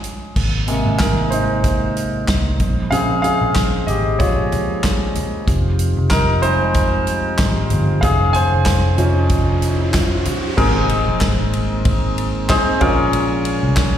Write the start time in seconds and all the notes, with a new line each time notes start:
Already playing: F3 G#3 F4
0.04 closed hi-hat
0.36 G#1 C3 G#3 A#3, kick, crash
0.67 C3 G#3 A#3, closed hi-hat
0.86 G#1
0.98 G#1 D#4 A#4, kick, snare, clap, closed hi-hat
1.30 D#4 C5, closed hi-hat
1.64 kick, closed hi-hat
1.97 closed hi-hat
2.28 C2, kick, snare, clap, closed hi-hat
2.60 A#1 C#3, kick, closed hi-hat, floor tom
2.91 A#1 C#3 G#3 C4 G#4 F5, closed hi-hat
3.22 G#4 F5, closed hi-hat
3.42 A#1
3.55 kick, snare, clap, closed hi-hat
3.87 G#1 G4 D#5, closed hi-hat
4.19 A#1 F4 C#5, kick, closed hi-hat
4.52 closed hi-hat, floor tom
4.84 kick, snare, clap, closed hi-hat
5.15 closed hi-hat, floor tom
5.47 F1 F3 C4 D#4 F4 G4, kick, closed hi-hat, riser
5.79 closed hi-hat
5.97 F1
6.10 F1 D#4 A#4, kick, snare, clap, closed hi-hat
6.42 G3 G#3 D#4 C5, closed hi-hat
6.74 kick, closed hi-hat
7.07 closed hi-hat
7.38 G#1, kick, snare, clap, closed hi-hat
7.70 G1, closed hi-hat, floor tom
8.01 F1 F3 C#4 D#4 G#4 F5, kick, closed hi-hat
8.33 C5 G#5, closed hi-hat
8.52 F1
8.66 kick, snare, clap, closed hi-hat
8.98 F1 F3 C#4 D#4, closed hi-hat
9.29 F1, kick, closed hi-hat
9.62 closed hi-hat
9.94 kick, snare, clap, closed hi-hat
10.25 closed hi-hat, floor tom
10.57 G#1 G#2 G#3 A#3 C4 D#4 G#4 A#4, kick, crash, impact
10.89 ride
11.08 A#1
11.21 G#1, kick, snare, clap, ride
11.53 ride
11.85 G#1, kick, ride
12.18 ride
12.49 C4 D#4 G#4 C5, kick, snare, clap, ride
12.81 A#1 A#2 C#4 F4 G#4 A#4, kick, floor tom, ride
13.13 A#1, ride
13.45 ride
13.63 C2
13.76 A#1, kick, snare, clap, ride